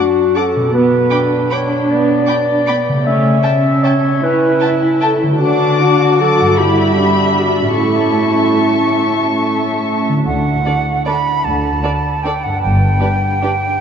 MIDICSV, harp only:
0, 0, Header, 1, 2, 480
1, 0, Start_track
1, 0, Key_signature, 2, "major"
1, 0, Tempo, 385604
1, 916, Time_signature, 3, 2, 24, 8
1, 4279, Tempo, 395778
1, 7639, Tempo, 379507
1, 8599, Tempo, 412371
1, 12439, Tempo, 394737
1, 16744, End_track
2, 0, Start_track
2, 0, Title_t, "Harp"
2, 0, Program_c, 0, 46
2, 0, Note_on_c, 0, 42, 38
2, 0, Note_on_c, 0, 62, 31
2, 0, Note_on_c, 0, 66, 33
2, 0, Note_on_c, 0, 69, 30
2, 695, Note_on_c, 0, 47, 42
2, 749, Note_on_c, 0, 59, 35
2, 804, Note_on_c, 0, 67, 35
2, 823, Note_off_c, 0, 42, 0
2, 859, Note_on_c, 0, 71, 33
2, 880, Note_off_c, 0, 66, 0
2, 906, Note_off_c, 0, 69, 0
2, 2745, Note_off_c, 0, 62, 0
2, 3592, Note_on_c, 0, 49, 42
2, 3643, Note_on_c, 0, 57, 35
2, 3681, Note_off_c, 0, 67, 0
2, 3696, Note_on_c, 0, 67, 34
2, 3710, Note_off_c, 0, 47, 0
2, 3737, Note_off_c, 0, 59, 0
2, 3754, Note_on_c, 0, 76, 34
2, 3792, Note_off_c, 0, 71, 0
2, 6449, Note_on_c, 0, 50, 43
2, 6489, Note_off_c, 0, 57, 0
2, 6504, Note_on_c, 0, 57, 33
2, 6557, Note_on_c, 0, 66, 36
2, 6585, Note_off_c, 0, 49, 0
2, 6615, Note_on_c, 0, 74, 33
2, 6636, Note_off_c, 0, 67, 0
2, 6664, Note_off_c, 0, 76, 0
2, 7889, Note_on_c, 0, 43, 37
2, 7949, Note_on_c, 0, 59, 31
2, 8004, Note_on_c, 0, 64, 29
2, 8016, Note_off_c, 0, 50, 0
2, 8044, Note_off_c, 0, 57, 0
2, 8062, Note_on_c, 0, 76, 30
2, 8072, Note_off_c, 0, 66, 0
2, 8102, Note_off_c, 0, 74, 0
2, 9341, Note_on_c, 0, 45, 34
2, 9397, Note_on_c, 0, 61, 29
2, 9435, Note_off_c, 0, 64, 0
2, 9449, Note_on_c, 0, 64, 28
2, 9462, Note_off_c, 0, 43, 0
2, 9487, Note_off_c, 0, 76, 0
2, 9490, Note_off_c, 0, 59, 0
2, 9501, Note_on_c, 0, 76, 29
2, 12231, Note_on_c, 0, 50, 37
2, 12279, Note_on_c, 0, 62, 30
2, 12332, Note_on_c, 0, 66, 30
2, 12352, Note_off_c, 0, 45, 0
2, 12379, Note_off_c, 0, 61, 0
2, 12391, Note_on_c, 0, 74, 31
2, 12406, Note_off_c, 0, 64, 0
2, 12431, Note_off_c, 0, 76, 0
2, 15093, Note_on_c, 0, 43, 39
2, 15132, Note_off_c, 0, 62, 0
2, 15146, Note_on_c, 0, 62, 31
2, 15202, Note_on_c, 0, 71, 33
2, 15225, Note_off_c, 0, 50, 0
2, 15277, Note_off_c, 0, 66, 0
2, 16744, Note_off_c, 0, 43, 0
2, 16744, Note_off_c, 0, 62, 0
2, 16744, Note_off_c, 0, 71, 0
2, 16744, Note_off_c, 0, 74, 0
2, 16744, End_track
0, 0, End_of_file